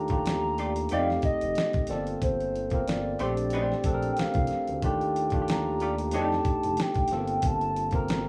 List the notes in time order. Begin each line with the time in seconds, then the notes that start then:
Already playing: D#2 A3 D4 F4 G4 A#5
0.08 A3 D4 F4, kick, closed hi-hat
0.12 G4
0.26 snare, closed hi-hat
0.58 A3 F4 G4 D5, closed hi-hat
0.76 closed hi-hat
0.89 F2 A3 C4 D#4 G4 D5 F5, closed hi-hat
0.93 G4
1.10 snare
1.22 D#5, kick, closed hi-hat
1.41 F1, closed hi-hat
1.55 snare, closed hi-hat
1.73 kick, closed hi-hat
1.87 G1 A#3 C4 F4 A4 D5, snare, closed hi-hat
2.07 closed hi-hat
2.22 G1 C5, kick, closed hi-hat
2.40 closed hi-hat
2.56 closed hi-hat
2.70 A#3 C4 F4, kick, closed hi-hat
2.75 A#4
2.88 D5, snare, closed hi-hat
3.19 A#1 A3 C4 D4 G4 C5, closed hi-hat
3.37 closed hi-hat
3.50 A3 D4 G4 C5, closed hi-hat
3.72 snare
3.84 A#1 C4 D4 A4, kick, closed hi-hat
3.94 A#4
4.02 closed hi-hat
4.13 G5, closed hi-hat
4.18 C2 F5, snare
4.34 C2, kick, closed hi-hat
4.47 snare, closed hi-hat
4.67 D2, closed hi-hat
4.82 D#2 A3 D4 F4 G4 G5, kick, closed hi-hat
5.01 closed hi-hat
5.16 closed hi-hat
5.30 A3 D4, kick, closed hi-hat
5.34 F4 G4
5.42 G4
5.48 A#5, snare, closed hi-hat
5.80 A3 F4 G4 D5, closed hi-hat
5.98 closed hi-hat
6.11 F2 A3 D4 D#4 G4 D5, closed hi-hat
6.16 A5
6.32 snare
6.45 kick, closed hi-hat
6.63 F1, closed hi-hat
6.77 G5, snare, closed hi-hat
6.94 kick, closed hi-hat
7.08 A3, snare, closed hi-hat
7.12 G1 C4 F4 A4
7.17 A#3
7.27 closed hi-hat
7.42 G1, kick, closed hi-hat
7.46 A5
7.61 closed hi-hat
7.76 closed hi-hat
7.91 A#3 C4 F4, kick, closed hi-hat
7.95 A#4 A#5
8.08 snare, closed hi-hat